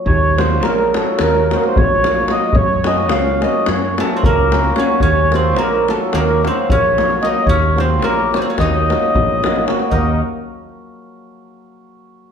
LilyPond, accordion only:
\new Staff \with { instrumentName = "Accordion" } { \time 9/8 \tempo 4. = 73 des''8 c''8 bes'8 a'8 bes'8 c''32 bes'32 c''16 des''4 ees''8 | des''8 ees''8 f''8 ees''8 des''32 des''32 des''16 a'16. c''32 bes'4 des''8 | des''8 c''8 bes'8 a'8 bes'8 c''8 des''4 ees''8 | des''8 c''8 bes'8 des''32 c''32 des''16 ees''2 r8 |
ees''8 r1 | }